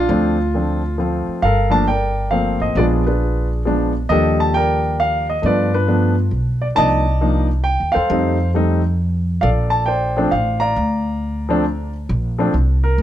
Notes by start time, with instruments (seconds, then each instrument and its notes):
Already playing: grand piano F4
0.09 upright bass D2, grand piano F3 A3 C4 D4
0.54 grand piano F3 A3 C4 D4
0.98 grand piano F3 A3 C4 F4
1.28 muted upright bass stroke
1.42 upright bass G1, grand piano A4 A#4 F5
1.70 grand piano F3 A3 A#3 D4 A5
1.88 grand piano A#4 D5 G5
2.31 grand piano F3 A3 A#3 C4 F5
2.60 upright bass A1, grand piano D#5
2.75 upright bass A#1, grand piano F3 G#3 B3 D4 G#4 D5
2.79 grand piano F4
3.06 grand piano D4 G#4 B4
3.65 grand piano F3 G#3 B3 D4
4.09 upright bass D#2, grand piano F3 G3 A#3 D4 G4 A4 D#5
4.40 grand piano A5
4.54 grand piano A#4 D5 G5
5.00 grand piano F5
5.30 grand piano D#5
5.42 upright bass G2, grand piano F3 A3 B3 D4 D5
5.46 grand piano F4 B4
5.74 grand piano D4 F4 B4
5.87 grand piano F3 A3 B3 D4
6.31 upright bass B1
6.62 grand piano D5
6.75 upright bass C2, grand piano F3 A#3 D4 D#4 D5 D#5 A5
7.21 grand piano F3 A#3 D4 D#4
7.64 grand piano G5
7.80 upright bass D#2
7.92 upright bass E2, grand piano A4 C5 F5
8.10 upright bass F2, grand piano G3 A3 C4 D#4
8.54 grand piano G3 A3 C4 D#4
9.41 upright bass A#1, grand piano A4 D5 F5
9.70 grand piano A5
9.86 grand piano C5 D5 G5
10.17 grand piano F3 A3 C4 D4
10.31 upright bass A1, grand piano F5
10.60 grand piano D5 F5 A#5
10.76 upright bass D2
11.49 grand piano F3 A3 C4 D4
12.09 upright bass A#1
12.38 grand piano F3 A3 C4 D4
12.54 upright bass C2
12.84 grand piano A#4
12.98 upright bass D2